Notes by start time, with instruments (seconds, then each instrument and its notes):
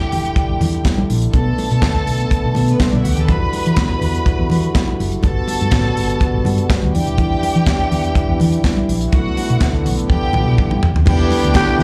Already playing: french horn section D3 G3 E4, string section G4 G5
0.12 fingered electric bass E1, open hi-hat, low conga
0.25 closed hi-hat
0.36 kick, closed hi-hat, muted conga
0.49 fingered electric bass E1
0.60 fingered electric bass E2, open hi-hat, muted conga, low conga
0.73 closed hi-hat
0.85 kick, snare, closed hi-hat, high conga
0.98 high conga
1.10 fingered electric bass A#1, open hi-hat
1.22 closed hi-hat
1.33 fingered electric bass B1, french horn section A3 B3, string section A4 A5, kick, closed hi-hat, muted conga
1.58 open hi-hat, muted conga
1.71 fingered electric bass B2, closed hi-hat
1.82 fingered electric bass D2, kick, snare, closed hi-hat, high conga
2.07 fingered electric bass B1, open hi-hat
2.20 closed hi-hat
2.30 kick, closed hi-hat, muted conga
2.45 fingered electric bass B1
2.55 fingered electric bass B2, open hi-hat, muted conga, low conga
2.68 string section B3 B4, closed hi-hat
2.79 string section C4 C5, kick, snare, closed hi-hat, high conga
2.87 string section D4 D5
2.93 fingered electric bass B1, string section E4 E5, high conga
3.03 fingered electric bass D2, string section F#4 F#5, open hi-hat
3.12 string section G4 G5
3.17 fingered electric bass D#2, string section A4, closed hi-hat
3.21 string section A5
3.28 fingered electric bass E2, french horn section G3 E4 F#4, string section B4 B5, kick, closed hi-hat, muted conga
3.53 open hi-hat, muted conga
3.66 fingered electric bass E3, closed hi-hat
3.76 fingered electric bass E2, kick, snare, closed hi-hat, high conga
4.01 fingered electric bass E2, open hi-hat, low conga
4.15 closed hi-hat
4.26 kick, closed hi-hat, muted conga
4.39 fingered electric bass E2
4.50 fingered electric bass E3, open hi-hat, muted conga, low conga
4.63 closed hi-hat
4.75 kick, snare, closed hi-hat, high conga
4.88 high conga
5.00 fingered electric bass F#1, open hi-hat
5.12 closed hi-hat
5.23 fingered electric bass G1, french horn section B3 F#4, string section A4 A5, kick, closed hi-hat, muted conga
5.48 open hi-hat, muted conga
5.61 fingered electric bass G2, closed hi-hat
5.71 fingered electric bass A1, kick, snare, closed hi-hat, high conga
5.97 fingered electric bass G1, open hi-hat
6.10 closed hi-hat
6.20 kick, closed hi-hat, muted conga
6.34 fingered electric bass G1
6.45 fingered electric bass G2, open hi-hat, muted conga, low conga
6.58 closed hi-hat
6.70 kick, snare, closed hi-hat, high conga
6.83 fingered electric bass D2, high conga
6.94 fingered electric bass E2, french horn section E3 D4 E4, string section G4 G5, open hi-hat
7.07 fingered electric bass D#1, closed hi-hat
7.18 fingered electric bass E2, kick, closed hi-hat, muted conga
7.43 open hi-hat, muted conga
7.55 fingered electric bass E3, closed hi-hat
7.66 fingered electric bass E2, kick, snare, closed hi-hat, high conga
7.92 fingered electric bass E2, open hi-hat, low conga
8.04 closed hi-hat
8.15 kick, closed hi-hat, muted conga
8.29 fingered electric bass E2
8.40 fingered electric bass E3, open hi-hat, muted conga, low conga
8.53 closed hi-hat
8.64 kick, snare, closed hi-hat, high conga
8.77 high conga
8.89 fingered electric bass A#1, open hi-hat
9.01 closed hi-hat
9.12 fingered electric bass B1, french horn section D3 A3 B3, string section F#4 F#5, kick, closed hi-hat, muted conga
9.37 open hi-hat, muted conga
9.50 fingered electric bass B2, closed hi-hat
9.60 fingered electric bass D2, kick, snare, closed hi-hat, high conga
9.86 fingered electric bass B1, open hi-hat
9.99 closed hi-hat
10.09 fingered electric bass E2, french horn section G3 E4, string section G4 G5, kick, high tom
10.33 fingered electric bass B1, mid tom, muted conga, low conga
10.47 fingered electric bass B2
10.58 kick, mid tom, high conga
10.70 fingered electric bass G2, mid tom, high conga
10.83 fingered electric bass E2, floor tom
10.96 fingered electric bass D#2, floor tom
11.06 fingered electric bass E2, french horn section D3 G3 D4 E4, horn section B3 G4 B4, string section G4 G5, kick, crash, muted conga
11.30 open hi-hat, muted conga
11.44 fingered electric bass D2, closed hi-hat
11.54 tenor saxophone G4, kick, snare, closed hi-hat, high conga
11.79 fingered electric bass B1, open hi-hat, low conga